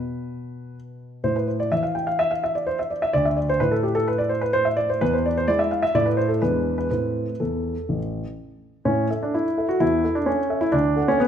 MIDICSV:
0, 0, Header, 1, 2, 480
1, 0, Start_track
1, 0, Key_signature, 0, "minor"
1, 0, Tempo, 478088
1, 1232, Time_signature, 4, 2, 24, 8
1, 3617, Tempo, 468019
1, 6497, Tempo, 488998
1, 8897, Tempo, 471328
1, 11362, End_track
2, 0, Start_track
2, 0, Title_t, "Grand piano"
2, 0, Program_c, 0, 0
2, 0, Note_on_c, 0, 47, 31
2, 0, Note_on_c, 0, 71, 56
2, 748, Note_off_c, 0, 71, 0
2, 1234, Note_off_c, 0, 47, 0
2, 1243, Note_on_c, 0, 45, 41
2, 1243, Note_on_c, 0, 72, 59
2, 1358, Note_off_c, 0, 72, 0
2, 1365, Note_on_c, 0, 71, 46
2, 1478, Note_off_c, 0, 71, 0
2, 1479, Note_on_c, 0, 72, 41
2, 1595, Note_off_c, 0, 72, 0
2, 1604, Note_on_c, 0, 74, 58
2, 1702, Note_off_c, 0, 45, 0
2, 1717, Note_off_c, 0, 74, 0
2, 1723, Note_on_c, 0, 76, 62
2, 1725, Note_on_c, 0, 52, 33
2, 1835, Note_on_c, 0, 77, 48
2, 1836, Note_off_c, 0, 76, 0
2, 1951, Note_off_c, 0, 77, 0
2, 1957, Note_on_c, 0, 79, 47
2, 2072, Note_off_c, 0, 79, 0
2, 2077, Note_on_c, 0, 77, 61
2, 2191, Note_off_c, 0, 77, 0
2, 2199, Note_on_c, 0, 76, 73
2, 2311, Note_off_c, 0, 76, 0
2, 2317, Note_on_c, 0, 77, 50
2, 2430, Note_off_c, 0, 77, 0
2, 2445, Note_on_c, 0, 76, 54
2, 2553, Note_off_c, 0, 76, 0
2, 2563, Note_on_c, 0, 74, 54
2, 2672, Note_off_c, 0, 74, 0
2, 2676, Note_on_c, 0, 72, 61
2, 2788, Note_off_c, 0, 72, 0
2, 2802, Note_on_c, 0, 76, 50
2, 2911, Note_off_c, 0, 76, 0
2, 2915, Note_on_c, 0, 74, 47
2, 3027, Note_off_c, 0, 74, 0
2, 3034, Note_on_c, 0, 76, 66
2, 3146, Note_off_c, 0, 52, 0
2, 3146, Note_off_c, 0, 76, 0
2, 3146, Note_on_c, 0, 74, 80
2, 3154, Note_on_c, 0, 38, 49
2, 3262, Note_off_c, 0, 74, 0
2, 3267, Note_on_c, 0, 76, 54
2, 3381, Note_on_c, 0, 74, 53
2, 3382, Note_off_c, 0, 76, 0
2, 3499, Note_off_c, 0, 74, 0
2, 3508, Note_on_c, 0, 72, 70
2, 3609, Note_off_c, 0, 38, 0
2, 3615, Note_on_c, 0, 71, 70
2, 3619, Note_on_c, 0, 45, 38
2, 3622, Note_off_c, 0, 72, 0
2, 3731, Note_on_c, 0, 69, 56
2, 3736, Note_off_c, 0, 71, 0
2, 3853, Note_on_c, 0, 67, 51
2, 3855, Note_off_c, 0, 69, 0
2, 3973, Note_on_c, 0, 69, 73
2, 3975, Note_off_c, 0, 67, 0
2, 4095, Note_off_c, 0, 69, 0
2, 4103, Note_on_c, 0, 71, 63
2, 4213, Note_on_c, 0, 74, 61
2, 4220, Note_off_c, 0, 71, 0
2, 4326, Note_on_c, 0, 72, 64
2, 4334, Note_off_c, 0, 74, 0
2, 4449, Note_on_c, 0, 71, 64
2, 4451, Note_off_c, 0, 72, 0
2, 4570, Note_on_c, 0, 72, 83
2, 4573, Note_off_c, 0, 71, 0
2, 4692, Note_on_c, 0, 76, 58
2, 4693, Note_off_c, 0, 72, 0
2, 4810, Note_on_c, 0, 74, 71
2, 4814, Note_off_c, 0, 76, 0
2, 4933, Note_off_c, 0, 74, 0
2, 4945, Note_on_c, 0, 72, 61
2, 5057, Note_off_c, 0, 45, 0
2, 5060, Note_off_c, 0, 72, 0
2, 5063, Note_on_c, 0, 71, 75
2, 5068, Note_on_c, 0, 40, 51
2, 5180, Note_off_c, 0, 71, 0
2, 5189, Note_on_c, 0, 72, 55
2, 5302, Note_off_c, 0, 72, 0
2, 5314, Note_on_c, 0, 74, 58
2, 5424, Note_off_c, 0, 74, 0
2, 5435, Note_on_c, 0, 72, 71
2, 5526, Note_off_c, 0, 40, 0
2, 5540, Note_on_c, 0, 74, 79
2, 5541, Note_on_c, 0, 56, 37
2, 5544, Note_off_c, 0, 72, 0
2, 5552, Note_on_c, 0, 64, 43
2, 5655, Note_on_c, 0, 76, 60
2, 5656, Note_off_c, 0, 74, 0
2, 5773, Note_off_c, 0, 76, 0
2, 5782, Note_on_c, 0, 77, 56
2, 5882, Note_off_c, 0, 56, 0
2, 5889, Note_off_c, 0, 64, 0
2, 5897, Note_off_c, 0, 77, 0
2, 5897, Note_on_c, 0, 76, 71
2, 6014, Note_off_c, 0, 76, 0
2, 6020, Note_on_c, 0, 45, 50
2, 6020, Note_on_c, 0, 64, 40
2, 6025, Note_on_c, 0, 57, 38
2, 6025, Note_on_c, 0, 74, 84
2, 6134, Note_on_c, 0, 71, 52
2, 6138, Note_off_c, 0, 74, 0
2, 6250, Note_on_c, 0, 72, 62
2, 6254, Note_off_c, 0, 71, 0
2, 6369, Note_on_c, 0, 69, 43
2, 6373, Note_off_c, 0, 72, 0
2, 6477, Note_off_c, 0, 64, 0
2, 6480, Note_off_c, 0, 57, 0
2, 6487, Note_off_c, 0, 45, 0
2, 6494, Note_off_c, 0, 69, 0
2, 6503, Note_on_c, 0, 71, 57
2, 6505, Note_on_c, 0, 62, 31
2, 6510, Note_on_c, 0, 40, 41
2, 6510, Note_on_c, 0, 56, 30
2, 6845, Note_off_c, 0, 71, 0
2, 6859, Note_on_c, 0, 71, 51
2, 6953, Note_off_c, 0, 62, 0
2, 6955, Note_off_c, 0, 56, 0
2, 6965, Note_off_c, 0, 40, 0
2, 6970, Note_off_c, 0, 71, 0
2, 6984, Note_on_c, 0, 71, 52
2, 6986, Note_on_c, 0, 45, 32
2, 6986, Note_on_c, 0, 57, 26
2, 6990, Note_on_c, 0, 60, 28
2, 7318, Note_off_c, 0, 45, 0
2, 7366, Note_off_c, 0, 57, 0
2, 7368, Note_off_c, 0, 60, 0
2, 7459, Note_off_c, 0, 71, 0
2, 7467, Note_on_c, 0, 69, 38
2, 7472, Note_on_c, 0, 40, 33
2, 7801, Note_off_c, 0, 40, 0
2, 7949, Note_on_c, 0, 33, 35
2, 8040, Note_off_c, 0, 69, 0
2, 8281, Note_off_c, 0, 33, 0
2, 8894, Note_on_c, 0, 61, 60
2, 8895, Note_on_c, 0, 45, 42
2, 9114, Note_off_c, 0, 61, 0
2, 9132, Note_off_c, 0, 45, 0
2, 9150, Note_on_c, 0, 69, 30
2, 9150, Note_on_c, 0, 76, 32
2, 9275, Note_on_c, 0, 62, 57
2, 9390, Note_off_c, 0, 62, 0
2, 9395, Note_on_c, 0, 64, 60
2, 9497, Note_off_c, 0, 69, 0
2, 9497, Note_off_c, 0, 76, 0
2, 9630, Note_on_c, 0, 69, 32
2, 9632, Note_on_c, 0, 76, 34
2, 9717, Note_off_c, 0, 64, 0
2, 9743, Note_on_c, 0, 66, 65
2, 9802, Note_off_c, 0, 69, 0
2, 9804, Note_off_c, 0, 76, 0
2, 9862, Note_on_c, 0, 64, 74
2, 9863, Note_on_c, 0, 40, 43
2, 9865, Note_off_c, 0, 66, 0
2, 10096, Note_off_c, 0, 40, 0
2, 10101, Note_on_c, 0, 69, 35
2, 10108, Note_on_c, 0, 76, 39
2, 10217, Note_on_c, 0, 62, 59
2, 10222, Note_off_c, 0, 64, 0
2, 10329, Note_on_c, 0, 61, 62
2, 10340, Note_off_c, 0, 62, 0
2, 10446, Note_off_c, 0, 69, 0
2, 10450, Note_off_c, 0, 76, 0
2, 10566, Note_on_c, 0, 69, 34
2, 10574, Note_on_c, 0, 76, 40
2, 10683, Note_on_c, 0, 64, 71
2, 10694, Note_off_c, 0, 61, 0
2, 10743, Note_off_c, 0, 69, 0
2, 10748, Note_off_c, 0, 76, 0
2, 10796, Note_on_c, 0, 62, 74
2, 10807, Note_on_c, 0, 38, 50
2, 10811, Note_off_c, 0, 64, 0
2, 11042, Note_on_c, 0, 69, 36
2, 11044, Note_off_c, 0, 38, 0
2, 11050, Note_on_c, 0, 78, 41
2, 11165, Note_off_c, 0, 62, 0
2, 11165, Note_on_c, 0, 61, 73
2, 11283, Note_on_c, 0, 59, 77
2, 11290, Note_off_c, 0, 61, 0
2, 11362, Note_off_c, 0, 59, 0
2, 11362, Note_off_c, 0, 69, 0
2, 11362, Note_off_c, 0, 78, 0
2, 11362, End_track
0, 0, End_of_file